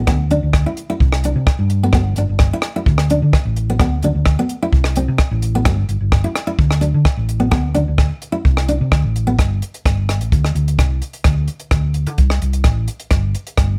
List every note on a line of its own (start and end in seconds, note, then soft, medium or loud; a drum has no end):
0.07 0.30 D2 loud
0.07 0.23 B3 medium
0.07 kick loud
0.07 cross-stick medium
0.30 0.42 D2 medium
0.30 0.46 D4 medium
0.30 closed hi-hat medium
0.43 0.65 D2 medium
0.53 kick loud
0.53 cross-stick medium
0.66 0.81 E4 medium
0.77 closed hi-hat soft
0.90 1.05 E4 medium
1.00 1.34 C2 loud
1.00 kick medium
1.12 cross-stick medium
1.24 1.40 D4 medium
1.24 closed hi-hat medium
1.36 1.46 C3 loud
1.47 kick medium
1.47 cross-stick medium
1.59 1.95 G2 medium
1.70 closed hi-hat medium
1.83 1.90 B3 medium
1.93 2.15 G1 loud
1.93 2.09 B3 medium
1.93 kick loud
1.93 cross-stick medium
2.16 2.28 G1 medium
2.16 2.33 D4 medium
2.16 closed hi-hat medium
2.29 2.51 G1 medium
2.39 kick loud
2.39 cross-stick medium
2.53 2.68 E4 medium
2.62 cross-stick medium
2.62 closed hi-hat soft
2.76 2.91 E4 medium
2.86 3.20 D2 loud
2.86 kick medium
2.98 cross-stick medium
3.10 3.26 D4 medium
3.10 closed hi-hat medium
3.22 3.33 D3 medium
3.33 kick medium
3.33 cross-stick medium
3.45 3.80 A1 medium
3.56 closed hi-hat soft
3.70 3.77 B3 medium
3.80 4.02 D2 loud
3.80 3.96 B3 medium
3.80 kick loud
3.80 cross-stick medium
4.03 4.14 D2 medium
4.03 4.19 D4 medium
4.03 closed hi-hat medium
4.15 4.37 D2 medium
4.26 kick medium
4.26 cross-stick medium
4.39 4.54 B3 medium
4.49 closed hi-hat medium
4.63 4.77 E4 medium
4.73 5.06 C2 medium
4.73 kick medium
4.84 cross-stick medium
4.96 5.12 C4 medium
4.96 closed hi-hat medium
5.08 5.19 C3 loud
5.18 kick medium
5.18 cross-stick medium
5.31 5.67 A1 medium
5.42 closed hi-hat medium
5.55 5.62 B3 medium
5.65 5.88 G1 loud
5.65 muted nylon-string guitar stroke loud
5.65 kick loud
5.65 cross-stick medium
5.89 6.00 G1 medium
5.89 closed hi-hat medium
6.01 6.23 G1 medium
6.12 kick loud
6.12 cross-stick medium
6.24 6.39 E4 medium
6.36 cross-stick medium
6.36 closed hi-hat medium
6.47 6.62 E4 medium
6.59 6.92 D2 medium
6.59 kick medium
6.71 cross-stick medium
6.81 6.97 D4 medium
6.81 closed hi-hat medium
6.94 7.05 D3 medium
7.05 kick loud
7.05 cross-stick medium
7.17 7.52 A1 medium
7.29 closed hi-hat medium
7.40 7.47 B3 medium
7.51 7.74 D2 loud
7.51 7.67 B3 medium
7.51 kick loud
7.51 cross-stick medium
7.75 7.87 D2 medium
7.75 7.90 D4 medium
7.75 closed hi-hat medium
7.88 8.09 D2 medium
7.98 kick loud
7.98 cross-stick medium
8.22 closed hi-hat soft
8.32 8.48 E4 medium
8.45 8.78 C2 loud
8.45 kick medium
8.57 cross-stick medium
8.68 8.84 D4 medium
8.68 closed hi-hat medium
8.81 8.91 C3 loud
8.92 9.03 D2 loud
8.92 kick medium
8.92 cross-stick medium
9.04 9.37 A1 medium
9.16 closed hi-hat medium
9.27 9.34 B3 medium
9.39 9.60 G1 medium
9.39 kick medium
9.39 cross-stick medium
9.39 closed hi-hat medium
9.62 closed hi-hat medium
9.74 closed hi-hat soft
9.86 10.20 G1 medium
9.86 kick medium
9.86 cross-stick medium
9.86 closed hi-hat medium
10.09 cross-stick medium
10.09 closed hi-hat soft
10.20 10.31 A1 medium
10.20 closed hi-hat soft
10.32 10.54 D2 medium
10.32 kick medium
10.32 closed hi-hat soft
10.45 cross-stick medium
10.55 10.77 D2 medium
10.55 closed hi-hat soft
10.68 closed hi-hat soft
10.79 11.00 C2 medium
10.79 kick medium
10.79 cross-stick medium
10.79 closed hi-hat soft
11.02 closed hi-hat soft
11.13 closed hi-hat soft
11.24 11.47 D2 medium
11.24 kick medium
11.24 cross-stick medium
11.24 closed hi-hat soft
11.48 closed hi-hat soft
11.60 closed hi-hat soft
11.71 12.07 D2 medium
11.71 kick medium
11.71 cross-stick medium
11.71 closed hi-hat soft
11.94 closed hi-hat soft
12.07 12.18 D3 medium
12.07 closed hi-hat soft
12.18 12.40 C2 medium
12.18 kick medium
12.18 closed hi-hat soft
12.30 cross-stick medium
12.42 12.64 C2 medium
12.42 closed hi-hat soft
12.53 closed hi-hat soft
12.64 12.87 A1 medium
12.64 kick medium
12.64 cross-stick medium
12.64 closed hi-hat soft
12.88 closed hi-hat medium
13.00 closed hi-hat soft
13.11 13.33 G1 medium
13.11 kick medium
13.11 cross-stick medium
13.11 closed hi-hat soft
13.35 closed hi-hat medium
13.47 closed hi-hat soft
13.57 13.79 G1 medium
13.57 kick medium
13.57 cross-stick medium
13.57 closed hi-hat medium